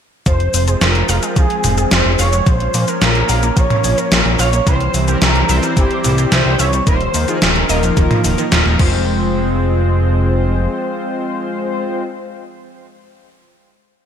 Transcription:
0.26 F1 F3 G#3 C4 C5, kick, closed hi-hat, cabasa
0.40 closed hi-hat
0.54 F1 F3, open hi-hat, cabasa
0.68 G#4, closed hi-hat, cabasa
0.81 F1 F4 A#4, snare, closed hi-hat, cabasa
0.95 closed hi-hat
1.09 F1 F5, open hi-hat, cabasa
1.23 G#3, closed hi-hat, cabasa
1.36 C2 F3 G#4, kick, closed hi-hat, cabasa
1.50 closed hi-hat
1.64 F1 F3, mid tom, open hi-hat, cabasa
1.78 G#4, closed hi-hat, cabasa
1.91 F1 F4 C5, snare, closed hi-hat, cabasa
2.05 F1
2.19 F1 C#5 F5, open hi-hat, cabasa
2.33 G#3, closed hi-hat, cabasa
2.46 A#1 F3 A#3 C#4 C5, kick, closed hi-hat, cabasa
2.60 closed hi-hat
2.74 A#2 F3, open hi-hat, cabasa
2.88 A#4, closed hi-hat, cabasa
3.01 A#1 F4 A#4, snare, closed hi-hat, cabasa
3.15 closed hi-hat
3.29 A#1 F5, open hi-hat, cabasa
3.43 A#3, closed hi-hat, cabasa
3.56 A#1 F3 C#5, kick, closed hi-hat, cabasa
3.70 closed hi-hat, mid tom
3.84 A#1 F3, open hi-hat, cabasa
3.98 A#4, closed hi-hat, cabasa
4.11 A#1 F4 A#4, snare, closed hi-hat, cabasa
4.25 A#1, snare
4.39 A#1 C#5 F5, open hi-hat, cabasa
4.53 A#3, closed hi-hat, cabasa
4.67 C2 E3 G3 C4 E4 C5, kick, closed hi-hat, cabasa
4.81 closed hi-hat
4.94 C2 E3, open hi-hat, cabasa
5.08 G3 C4 E4 G4 A#4, closed hi-hat, cabasa
5.22 C2 E4 A#4, snare, closed hi-hat, cabasa
5.35 closed hi-hat
5.49 C2 G3 C4 E4 C5 E5, open hi-hat, cabasa
5.63 G3, closed hi-hat, cabasa
5.77 G1 E3 G4, kick, closed hi-hat, cabasa
5.91 closed hi-hat
6.04 C2 E3 G3 C4 E4 C5, mid tom, open hi-hat, cabasa
6.18 G4, closed hi-hat, cabasa
6.32 C2 E4 C5, snare, closed hi-hat, cabasa
6.46 C2 G3 C4 E4 C5
6.59 C2 C#5 E5, open hi-hat, cabasa
6.73 G3, closed hi-hat, cabasa
6.87 D#1 D#3 F3 A#3 D#4 A#4 C5, kick, closed hi-hat, cabasa
7.01 closed hi-hat
7.14 D#2 D#3, open hi-hat, cabasa
7.28 F3 A#3 D#4 F4 G#4, closed hi-hat, cabasa
7.42 D#1 D#4 A#4, snare, closed hi-hat, cabasa
7.56 closed hi-hat
7.69 D#1 F3 A#3 D#4 A#4 D#5, open hi-hat, cabasa
7.83 F3, closed hi-hat, cabasa
7.97 D#1 D#3 F4, kick, closed hi-hat, cabasa
8.11 closed hi-hat, mid tom
8.24 D#1 D#3 F3 A#3 D#4 A#4, open hi-hat, cabasa
8.38 D#3, closed hi-hat, cabasa
8.52 D#1 F4, snare, closed hi-hat, cabasa
8.66 D#1 F3 A#3 D#4 A#4, snare
8.79 F1 F3 G#3 C4 F4 C5, kick, crash

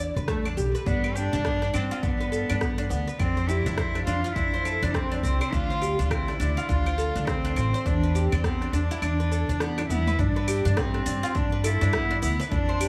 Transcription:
Already playing: E2
0.00 D5
0.16 E2 B4, darbuka dum, shaker
0.28 A3, kick, cross-stick, shaker
0.45 D4, darbuka tek, claves, shaker
0.57 B1 G4, shaker
0.75 B4, shaker
0.86 G2 B3 D4 D5, kick, shaker
1.04 B4, claves, shaker
1.16 D4 G4, darbuka ka, shaker
1.33 G2 D4, darbuka dum, shaker
1.45 B3, kick, cross-stick, shaker
1.62 D4, cross-stick, darbuka tek, shaker
1.74 G2 C4 D4, claves, shaker
1.91 F4, darbuka ka, shaker
2.03 G2 B3 D4, kick, shaker
2.20 B4, darbuka tek, shaker
2.32 A4, shaker
2.50 G2 D4, claves, shaker
2.61 B3, kick, cross-stick, shaker
2.78 D4, shaker
2.90 D2 B3, darbuka tek, shaker
3.07 B4, shaker
3.19 F2 C4 D4, kick, claves, shaker
3.37 C5, shaker
3.49 E4 G4, darbuka ka, shaker
3.66 F2 D4, darbuka dum, shaker
3.78 C4, kick, cross-stick, shaker
3.95 D4, cross-stick, darbuka tek, claves, shaker
4.07 F2 D4 F4, shaker
4.24 F4, darbuka ka, shaker
4.36 F2 D4 E4, kick, shaker
4.54 C5, shaker
4.65 A4, darbuka tek, claves, shaker
4.83 F2 D4, darbuka dum, shaker
4.94 C4, kick, cross-stick, shaker
5.12 D4, shaker
5.23 C2 C4, shaker
5.41 C5, claves, shaker
5.52 D2 D4 F4, kick, shaker
5.70 C5, shaker
5.82 G4, darbuka ka, shaker
5.99 D2 D4, darbuka dum, shaker
6.05 F4
6.10 C4 E4, kick, cross-stick, claves, shaker
6.28 D4, cross-stick, darbuka tek, shaker
6.40 D2 D4, shaker
6.57 F4, darbuka ka, shaker
6.69 D2 D4 F4, kick, shaker
6.86 C5, darbuka tek, claves, shaker
6.98 A4, shaker
7.16 D2 D4, shaker
7.27 C4, kick, cross-stick, shaker
7.45 D4, shaker
7.56 A1 C4, darbuka tek, claves, shaker
7.74 C5, shaker
7.86 E2 D4, kick, shaker
8.03 B4, shaker
8.14 G4, darbuka ka, shaker
8.32 E2 C4 D4, darbuka dum, claves, shaker
8.44 B3, kick, cross-stick, shaker
8.61 D4, cross-stick, darbuka tek, shaker
8.73 E2 D4, shaker
8.91 E4, darbuka ka, shaker
9.02 E2 D4, claves, shaker
9.20 B4, shaker
9.32 A4, darbuka tek, shaker
9.48 E2 D4, darbuka dum, shaker
9.60 B3, cross-stick, high tom, shaker
9.78 D4, cross-stick, high tom, darbuka tek, claves, shaker
9.89 E2 B3 E4, mid tom, shaker
10.07 B4, mid tom, shaker
10.19 G2 D4, kick, shaker
10.36 B4
10.47 G4, open hi-hat, darbuka ka, claves, shaker
10.65 G2 D4, darbuka dum, shaker
10.77 B3 C4, kick, cross-stick, darbuka tek, shaker
10.94 D4, cross-stick
11.06 G2 D4, open hi-hat, shaker
11.23 F4, darbuka ka, darbuka tek, shaker
11.35 G2 D4, kick, shaker
11.52 B4
11.64 E4 A4, open hi-hat, claves, shaker
11.81 G2 D4, darbuka tek, shaker
11.93 B3, kick, cross-stick, shaker
12.11 D4
12.22 D2 B3 E4, open hi-hat, shaker
12.40 B4, darbuka tek, shaker
12.51 F2 D4, kick, shaker
12.69 C5
12.80 G4, open hi-hat, darbuka ka, claves, shaker

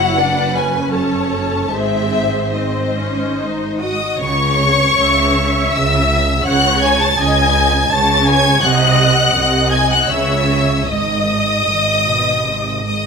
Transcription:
Already playing: F#1 F#2 E4 F#4 C#5 F#5
0.17 D4 B4 D5
0.53 C#4 B4 G#5
0.91 A4 C#5 A5
1.71 G#1 G#2 C4 G#4 C5 E5
2.54 C4 D#5
2.96 C#4
3.38 D#4
3.78 F#4 D#5 D#6
4.18 C#2 C#3 C#5 C#6
4.95 C#2 C#3 E5
5.72 C#2 C#3 E5 E6
6.44 C#2 C#3 C#5 F#5 F#6
6.82 G#5 G#6
7.00 A5 A6
7.17 C#2 C#3 D#5 G#5 G#6
7.90 C#2 C#3 C#5 A5 A6
8.27 G#5 G#6
8.61 C2 C3 D#5 F#5 F#6
9.34 C2 C3 D#5
9.72 G#5 G#6
9.91 F#5 F#6
10.09 C#2 C#3 C#5 E5 E6
10.87 G#1 G#2 D#5 D#6
11.67 G#1 G#2
12.07 B2
12.46 G#1 C3
12.85 G#2 D#5 D#6

